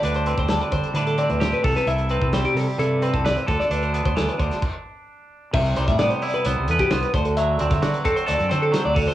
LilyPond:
<<
  \new Staff \with { instrumentName = "Clean electric guitar" } { \time 4/4 \key c \lydian \tempo 4 = 131 b'16 c''16 b'16 c''16 a'16 b'16 c''8 b'16 a'16 d''16 b'16 c''16 b'16 a'16 b'16 | e''8 b'8 c''16 g'16 a'16 g'16 a'8 b'16 a'16 d''16 c''16 a'16 d''16 | b'16 c''16 b'16 c''16 a'16 b'16 c''8 r2 | e''8 c''16 e''16 d''16 c''16 d''16 b'16 c''8 a'16 g'16 c''16 b'16 c''16 a'16 |
e''8 d''16 e''16 d''16 b'16 a'16 c''16 d''8 c''16 a'16 c''16 d''16 a'16 c''16 | }
  \new Staff \with { instrumentName = "Clean electric guitar" } { \time 4/4 \key c \lydian << { <d' g'>8 c'4. d'8 c'8 g'8 a'8 | e'8 c'4. e'8 c'8 b'8 a'8 | d'8 b4. r2 | r4 b8 e'8 b8 b'8 b8 r8 |
r8 c'8 fis'8 c'8 a'8 c'4 r8 | } \\ { d4 g4 a,4. c8~ | c4 g4 g,4. d8~ | d4 e8 d8 r2 | c8 g2. d8 |
fis2. fis8 d8 | } >> }
  \new Staff \with { instrumentName = "Fingered electric bass" } { \clef bass \time 4/4 \key c \lydian d,8. d,8 r16 d16 r16 d8. d,8 r16 c,16 r16 | c,8. c,8 r16 c16 r16 c8. c,8 r16 d,16 r16 | d,8. d,8 r16 d,16 r2 r16 | c,8 c,16 a,8 r8. c,16 c,16 e,16 r16 c,16 r16 d,8~ |
d,8 d,16 d8 r8. d,16 fis,16 d8 r16 d,8 r16 | }
  \new DrumStaff \with { instrumentName = "Drums" } \drummode { \time 4/4 hh16 hh16 hh16 <hh bd>16 <hh sn>16 hh16 <hh bd>16 hh16 hh16 hh16 hh16 hh16 <hh sn>16 hh16 <hho bd>16 <hh sn>16 | hh16 hh16 hh16 bd16 <hh sn>16 hh16 <hho sn>8 hh8 hh16 <hh bd>16 <hh sn>16 hh16 <hh bd>16 sn16 | hh16 hh16 hh16 <hh bd>16 <hh sn>16 hh16 <hh bd>16 <hh sn>16 <cymc bd>4 r4 | <cymc bd>16 hh16 hh16 <hh bd sn>16 <hh sn>16 hh16 hho16 hh16 hh8 hh16 <hh bd>16 <hh sn>16 hh16 <hh bd>16 hh16 |
hh8 hh16 <hh bd sn>16 <hh sn>16 hh16 <hh bd>16 hh16 hh16 hh16 hh8 <hh sn>8 <hho bd>8 | }
>>